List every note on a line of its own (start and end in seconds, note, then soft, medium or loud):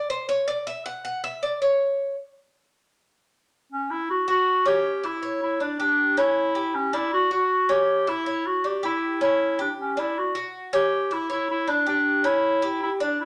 0.10 0.28 C5 loud
0.29 0.47 C#5 medium
0.48 0.66 D5 medium
0.67 0.85 E5 loud
0.86 1.03 F#5 medium
1.05 1.23 F#5 medium
1.24 1.42 E5 loud
1.43 1.61 D5 medium
1.62 2.15 C#5 medium
3.72 3.92 C#4 medium
3.91 4.09 E4 loud
4.10 4.27 F#4 loud
4.28 4.64 F#4 medium
4.28 4.63 F#4 loud
4.66 5.02 C#4 loud
4.66 5.07 G4 loud
5.04 5.22 E4 medium
5.04 5.42 E4 loud
5.23 5.59 C#5 medium
5.42 5.60 E4 loud
5.60 5.79 D4 medium
5.80 6.20 D4 loud
5.80 6.16 G4 medium
6.17 6.54 C#4 loud
6.17 6.76 E4 loud
6.55 6.92 G4 medium
6.75 6.95 C#4 medium
6.93 7.30 D4 medium
6.93 7.12 E4 loud
7.13 7.30 F#4 loud
7.31 7.68 F#4 medium
7.31 7.72 F#4 loud
7.69 8.06 C#4 loud
7.69 8.10 G4 loud
8.07 8.26 E4 medium
8.07 8.48 E4 loud
8.26 8.63 C#5 medium
8.46 8.67 F#4 medium
8.64 8.82 D4 medium
8.64 8.84 G4 medium
8.83 9.19 E4 loud
8.83 9.20 G4 medium
9.21 9.58 C#4 medium
9.21 9.57 E4 loud
9.59 9.69 D4 medium
9.59 9.96 G4 medium
9.80 10.01 C#4 medium
9.97 10.34 D4 medium
9.97 10.20 E4 loud
10.18 10.36 F#4 medium
10.35 10.72 F#4 medium
10.73 11.10 C#4 loud
10.73 11.14 G4 loud
11.11 11.29 E4 medium
11.11 11.31 E4 loud
11.30 11.48 E4 loud
11.30 11.66 C#5 medium
11.50 11.71 E4 loud
11.67 11.86 D4 medium
11.67 11.87 D4 medium
11.86 12.27 D4 loud
11.86 12.23 G4 medium
12.24 12.61 C#4 loud
12.24 12.82 E4 loud
12.62 12.99 G4 medium
12.82 12.91 E4 loud
13.00 13.25 D4 loud
13.00 13.19 D4 loud
13.20 13.25 E4 medium